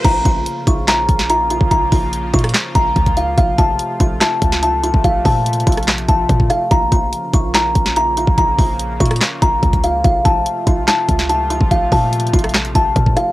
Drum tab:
CC |x-----------------------------------------------------------------------------------------------|------------------------------------------------------------------------------------------------|------------------------------------------------------------------------------------------------|------------------------------------------------------------------------------------------------|
HH |x-----------x-----------x-----------x-----------x-----------x-----------x-----------x-----------|x-----------o-----------x-----------x--x--x--x--x-----------x-----------x-----x-----x-----------|x-----------x-----------x-----------x-----------x-----------x-----------x-----------x-----------|x-----------o-----------x---x---x---x--x--x--x--------x-----x-----------x-----------x-----------|
CP |------------------------------------------------x-----------------------------------------------|------------------------------------------------x-----------------------------------------------|------------------------------------------------x-----------------------------------------------|------------------------------------------------x-----------------------------------------------|
SD |------------------------------------------------o-----------------o-----------------------------|------------------------------------------r-----o-----------------------------------------------|------------------------------------------------o-----------------o-----------------------------|------------------------------------------r-----o-----------------------------------r-----------|
BD |o-----------o-----------------------o-----------------------o-----------------------------o-----|o-----------o-----------------------o-----------------------o-----------o-----o-----------------|o-----------o-----------------------o-----------------------o-----------------------------o-----|o-----------o-----------------------o-----------------------o-----------o-----o-----------------|

CC |------------------------------------------------------------------------------------------------|------------------------------------------------------------------------------------------------|------------------------------------------------------------------------------------------------|------------------------------------------------------------------------------------------------|
HH |x-----------x-----------x-----------x-----------x-----------x-----------x-----------x-----------|x-----------o-----------x-----------x--x--x--x--x-----------x-----------x-----x-----x-----------|x-----------x-----------x-----------x-----------x-----------x-----------x-----------x-----------|x-----------o-----------x---x---x---x--x--x--x--x-----x-----x-----------x-----------x-----------|
CP |------------------------------------------------x-----------------------------------------------|------------------------------------------------x-----------------------------------------------|------------------------------------------------x-----------------------------------------------|------------------------------------------------x-----------------------------------------------|
SD |------------------------------------------------o-----------------o-----------------------------|------------------------------------------r-----o-----------------------------------------------|------------------------------------------------o-----------------o-----------------------------|------------------------------------------r-----o-----------------------------------r-----------|
BD |o-----------o-----------------------o-----------------------o-----------------------------o-----|o-----------o-----------------------o-----------------------o-----------o-----o-----------------|o-----------o-----------------------o-----------------------o-----------------------------o-----|o-----------o-----------------------o-----------------------o-----------o-----o-----------------|